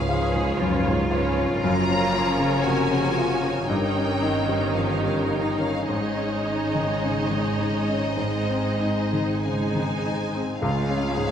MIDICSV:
0, 0, Header, 1, 8, 480
1, 0, Start_track
1, 0, Tempo, 1015228
1, 755, Time_signature, 4, 2, 24, 8
1, 1238, Tempo, 1075269
1, 2198, Tempo, 1136364
1, 3638, Tempo, 1271186
1, 4118, Tempo, 1165049
1, 4598, Tempo, 1096892
1, 4904, End_track
2, 0, Start_track
2, 0, Title_t, "Violin section"
2, 0, Program_c, 0, 48
2, 0, Note_on_c, 0, 77, 59
2, 276, Note_off_c, 0, 77, 0
2, 756, Note_on_c, 0, 82, 77
2, 1220, Note_off_c, 0, 82, 0
2, 1234, Note_on_c, 0, 80, 62
2, 1708, Note_off_c, 0, 80, 0
2, 1708, Note_on_c, 0, 79, 63
2, 2196, Note_off_c, 0, 79, 0
2, 2196, Note_on_c, 0, 77, 40
2, 2232, Note_off_c, 0, 77, 0
2, 2234, Note_on_c, 0, 79, 42
2, 2260, Note_on_c, 0, 77, 44
2, 2268, Note_off_c, 0, 79, 0
2, 2295, Note_on_c, 0, 79, 45
2, 2299, Note_off_c, 0, 77, 0
2, 2327, Note_on_c, 0, 77, 41
2, 2334, Note_off_c, 0, 79, 0
2, 2368, Note_off_c, 0, 77, 0
2, 2368, Note_on_c, 0, 79, 43
2, 2400, Note_on_c, 0, 77, 37
2, 2406, Note_off_c, 0, 79, 0
2, 2440, Note_off_c, 0, 77, 0
2, 2441, Note_on_c, 0, 79, 45
2, 2471, Note_on_c, 0, 77, 44
2, 2479, Note_off_c, 0, 79, 0
2, 2511, Note_off_c, 0, 77, 0
2, 2512, Note_on_c, 0, 79, 42
2, 2544, Note_on_c, 0, 77, 55
2, 2550, Note_off_c, 0, 79, 0
2, 2673, Note_on_c, 0, 75, 60
2, 2676, Note_off_c, 0, 77, 0
2, 4101, Note_off_c, 0, 75, 0
2, 4117, Note_on_c, 0, 80, 50
2, 4593, Note_on_c, 0, 77, 71
2, 4598, Note_off_c, 0, 80, 0
2, 4904, Note_off_c, 0, 77, 0
2, 4904, End_track
3, 0, Start_track
3, 0, Title_t, "Violin section"
3, 0, Program_c, 1, 48
3, 48, Note_on_c, 1, 73, 49
3, 50, Note_on_c, 1, 71, 47
3, 511, Note_off_c, 1, 73, 0
3, 512, Note_off_c, 1, 71, 0
3, 518, Note_on_c, 1, 73, 45
3, 523, Note_on_c, 1, 71, 45
3, 751, Note_off_c, 1, 73, 0
3, 753, Note_off_c, 1, 71, 0
3, 758, Note_on_c, 1, 70, 53
3, 759, Note_on_c, 1, 73, 59
3, 1694, Note_off_c, 1, 70, 0
3, 1694, Note_off_c, 1, 73, 0
3, 1711, Note_on_c, 1, 73, 47
3, 1714, Note_on_c, 1, 70, 46
3, 2663, Note_off_c, 1, 73, 0
3, 2664, Note_off_c, 1, 70, 0
3, 2674, Note_on_c, 1, 68, 42
3, 2676, Note_on_c, 1, 73, 41
3, 3619, Note_off_c, 1, 68, 0
3, 3620, Note_off_c, 1, 73, 0
3, 3632, Note_on_c, 1, 72, 42
3, 3633, Note_on_c, 1, 68, 36
3, 4106, Note_off_c, 1, 72, 0
3, 4107, Note_off_c, 1, 68, 0
3, 4113, Note_on_c, 1, 68, 34
3, 4117, Note_on_c, 1, 72, 36
3, 4504, Note_off_c, 1, 68, 0
3, 4506, Note_off_c, 1, 72, 0
3, 4603, Note_on_c, 1, 68, 48
3, 4603, Note_on_c, 1, 73, 46
3, 4904, Note_off_c, 1, 68, 0
3, 4904, Note_off_c, 1, 73, 0
3, 4904, End_track
4, 0, Start_track
4, 0, Title_t, "Cello section"
4, 0, Program_c, 2, 48
4, 38, Note_on_c, 2, 68, 57
4, 273, Note_on_c, 2, 65, 58
4, 274, Note_off_c, 2, 68, 0
4, 1235, Note_off_c, 2, 65, 0
4, 1236, Note_on_c, 2, 66, 52
4, 1707, Note_on_c, 2, 63, 45
4, 1709, Note_off_c, 2, 66, 0
4, 1946, Note_off_c, 2, 63, 0
4, 1949, Note_on_c, 2, 60, 41
4, 2192, Note_on_c, 2, 61, 35
4, 2196, Note_off_c, 2, 60, 0
4, 2431, Note_on_c, 2, 63, 38
4, 2434, Note_off_c, 2, 61, 0
4, 2669, Note_off_c, 2, 63, 0
4, 2674, Note_on_c, 2, 63, 38
4, 4347, Note_off_c, 2, 63, 0
4, 4589, Note_on_c, 2, 65, 42
4, 4817, Note_off_c, 2, 65, 0
4, 4831, Note_on_c, 2, 68, 52
4, 4904, Note_off_c, 2, 68, 0
4, 4904, End_track
5, 0, Start_track
5, 0, Title_t, "Viola section"
5, 0, Program_c, 3, 48
5, 38, Note_on_c, 3, 53, 51
5, 41, Note_on_c, 3, 61, 43
5, 506, Note_off_c, 3, 53, 0
5, 508, Note_off_c, 3, 61, 0
5, 516, Note_on_c, 3, 53, 43
5, 516, Note_on_c, 3, 61, 45
5, 746, Note_off_c, 3, 53, 0
5, 748, Note_off_c, 3, 61, 0
5, 752, Note_on_c, 3, 53, 53
5, 754, Note_on_c, 3, 61, 53
5, 1691, Note_off_c, 3, 53, 0
5, 1692, Note_off_c, 3, 61, 0
5, 1708, Note_on_c, 3, 63, 45
5, 1710, Note_on_c, 3, 51, 44
5, 2679, Note_off_c, 3, 63, 0
5, 2680, Note_off_c, 3, 51, 0
5, 2683, Note_on_c, 3, 56, 42
5, 2684, Note_on_c, 3, 63, 43
5, 3624, Note_off_c, 3, 63, 0
5, 3638, Note_off_c, 3, 56, 0
5, 3641, Note_on_c, 3, 63, 33
5, 3643, Note_on_c, 3, 56, 38
5, 4110, Note_off_c, 3, 63, 0
5, 4111, Note_off_c, 3, 56, 0
5, 4119, Note_on_c, 3, 56, 38
5, 4120, Note_on_c, 3, 63, 32
5, 4507, Note_off_c, 3, 56, 0
5, 4507, Note_off_c, 3, 63, 0
5, 4603, Note_on_c, 3, 56, 43
5, 4604, Note_on_c, 3, 61, 50
5, 4904, Note_off_c, 3, 56, 0
5, 4904, Note_off_c, 3, 61, 0
5, 4904, End_track
6, 0, Start_track
6, 0, Title_t, "French horn section"
6, 0, Program_c, 4, 60
6, 0, Note_on_c, 4, 53, 42
6, 0, Note_on_c, 4, 61, 44
6, 673, Note_off_c, 4, 53, 0
6, 673, Note_off_c, 4, 61, 0
6, 754, Note_on_c, 4, 61, 52
6, 756, Note_on_c, 4, 53, 50
6, 1692, Note_off_c, 4, 61, 0
6, 1693, Note_off_c, 4, 53, 0
6, 1713, Note_on_c, 4, 61, 41
6, 1714, Note_on_c, 4, 51, 46
6, 2664, Note_off_c, 4, 61, 0
6, 2676, Note_on_c, 4, 61, 35
6, 2678, Note_on_c, 4, 56, 42
6, 2681, Note_off_c, 4, 51, 0
6, 3620, Note_off_c, 4, 61, 0
6, 3621, Note_off_c, 4, 56, 0
6, 3641, Note_on_c, 4, 56, 37
6, 3643, Note_on_c, 4, 60, 32
6, 4107, Note_off_c, 4, 56, 0
6, 4110, Note_off_c, 4, 60, 0
6, 4111, Note_on_c, 4, 56, 34
6, 4115, Note_on_c, 4, 60, 36
6, 4453, Note_off_c, 4, 56, 0
6, 4455, Note_off_c, 4, 60, 0
6, 4590, Note_on_c, 4, 56, 44
6, 4593, Note_on_c, 4, 61, 40
6, 4782, Note_off_c, 4, 56, 0
6, 4784, Note_off_c, 4, 61, 0
6, 4904, End_track
7, 0, Start_track
7, 0, Title_t, "Grand piano"
7, 0, Program_c, 5, 0
7, 0, Control_c, 5, 64, 127
7, 0, Note_on_c, 5, 42, 34
7, 0, Note_on_c, 5, 44, 45
7, 0, Note_on_c, 5, 61, 37
7, 0, Note_on_c, 5, 65, 46
7, 42, Note_off_c, 5, 65, 0
7, 42, Note_on_c, 5, 65, 44
7, 112, Note_off_c, 5, 61, 0
7, 161, Note_off_c, 5, 44, 0
7, 161, Note_on_c, 5, 44, 43
7, 233, Note_off_c, 5, 65, 0
7, 291, Note_off_c, 5, 42, 0
7, 291, Note_on_c, 5, 42, 41
7, 351, Note_off_c, 5, 44, 0
7, 403, Note_off_c, 5, 42, 0
7, 409, Note_on_c, 5, 44, 43
7, 526, Note_on_c, 5, 65, 39
7, 593, Note_off_c, 5, 44, 0
7, 650, Note_on_c, 5, 61, 44
7, 711, Note_off_c, 5, 65, 0
7, 762, Note_off_c, 5, 61, 0
7, 762, Control_c, 5, 64, 0
7, 774, Note_on_c, 5, 42, 58
7, 824, Control_c, 5, 64, 127
7, 898, Note_on_c, 5, 61, 42
7, 1006, Note_on_c, 5, 65, 42
7, 1080, Note_off_c, 5, 61, 0
7, 1124, Note_on_c, 5, 49, 41
7, 1195, Note_off_c, 5, 65, 0
7, 1251, Note_on_c, 5, 48, 37
7, 1311, Note_off_c, 5, 49, 0
7, 1360, Note_off_c, 5, 48, 0
7, 1371, Note_on_c, 5, 49, 34
7, 1490, Note_on_c, 5, 65, 40
7, 1551, Note_off_c, 5, 49, 0
7, 1603, Note_on_c, 5, 61, 37
7, 1671, Note_off_c, 5, 65, 0
7, 1701, Note_off_c, 5, 42, 0
7, 1717, Note_off_c, 5, 61, 0
7, 1718, Control_c, 5, 64, 0
7, 1718, Note_on_c, 5, 43, 51
7, 1780, Control_c, 5, 64, 127
7, 1839, Note_on_c, 5, 61, 37
7, 1954, Note_on_c, 5, 63, 40
7, 2029, Note_off_c, 5, 61, 0
7, 2072, Note_on_c, 5, 55, 37
7, 2149, Note_off_c, 5, 63, 0
7, 2188, Note_on_c, 5, 53, 30
7, 2267, Note_off_c, 5, 55, 0
7, 2309, Note_on_c, 5, 55, 36
7, 2311, Note_off_c, 5, 53, 0
7, 2425, Note_on_c, 5, 63, 35
7, 2506, Note_off_c, 5, 55, 0
7, 2548, Note_on_c, 5, 61, 34
7, 2625, Note_off_c, 5, 63, 0
7, 2666, Note_off_c, 5, 43, 0
7, 2672, Note_on_c, 5, 44, 45
7, 2675, Note_off_c, 5, 61, 0
7, 2687, Control_c, 5, 64, 0
7, 2771, Control_c, 5, 64, 127
7, 2789, Note_on_c, 5, 61, 31
7, 2910, Note_on_c, 5, 63, 35
7, 2985, Note_off_c, 5, 61, 0
7, 3033, Note_on_c, 5, 51, 31
7, 3105, Note_off_c, 5, 63, 0
7, 3154, Note_on_c, 5, 49, 31
7, 3225, Note_off_c, 5, 51, 0
7, 3272, Note_on_c, 5, 51, 30
7, 3274, Note_off_c, 5, 49, 0
7, 3396, Note_on_c, 5, 63, 33
7, 3465, Note_off_c, 5, 51, 0
7, 3515, Note_on_c, 5, 61, 30
7, 3590, Note_off_c, 5, 63, 0
7, 3618, Note_off_c, 5, 44, 0
7, 3635, Note_on_c, 5, 44, 39
7, 3639, Note_off_c, 5, 61, 0
7, 3646, Control_c, 5, 64, 0
7, 3718, Control_c, 5, 64, 127
7, 3758, Note_on_c, 5, 60, 30
7, 3871, Note_on_c, 5, 63, 34
7, 3952, Note_off_c, 5, 60, 0
7, 3997, Note_on_c, 5, 51, 29
7, 4069, Note_off_c, 5, 63, 0
7, 4120, Note_on_c, 5, 49, 28
7, 4194, Note_off_c, 5, 51, 0
7, 4240, Note_on_c, 5, 51, 34
7, 4245, Note_off_c, 5, 49, 0
7, 4368, Note_on_c, 5, 63, 31
7, 4435, Note_off_c, 5, 51, 0
7, 4487, Note_on_c, 5, 60, 33
7, 4554, Note_off_c, 5, 63, 0
7, 4581, Note_off_c, 5, 44, 0
7, 4601, Note_off_c, 5, 60, 0
7, 4601, Note_on_c, 5, 37, 54
7, 4607, Control_c, 5, 64, 0
7, 4675, Control_c, 5, 64, 127
7, 4723, Note_on_c, 5, 61, 41
7, 4841, Note_on_c, 5, 44, 39
7, 4904, Note_off_c, 5, 37, 0
7, 4904, Note_off_c, 5, 44, 0
7, 4904, Note_off_c, 5, 61, 0
7, 4904, End_track
8, 0, Start_track
8, 0, Title_t, "Double bass section"
8, 0, Program_c, 6, 48
8, 0, Note_on_c, 6, 37, 58
8, 225, Note_off_c, 6, 37, 0
8, 276, Note_on_c, 6, 37, 51
8, 697, Note_off_c, 6, 37, 0
8, 750, Note_on_c, 6, 30, 50
8, 1690, Note_off_c, 6, 30, 0
8, 1712, Note_on_c, 6, 31, 47
8, 2680, Note_on_c, 6, 32, 38
8, 2681, Note_off_c, 6, 31, 0
8, 4515, Note_off_c, 6, 32, 0
8, 4597, Note_on_c, 6, 37, 43
8, 4904, Note_off_c, 6, 37, 0
8, 4904, End_track
0, 0, End_of_file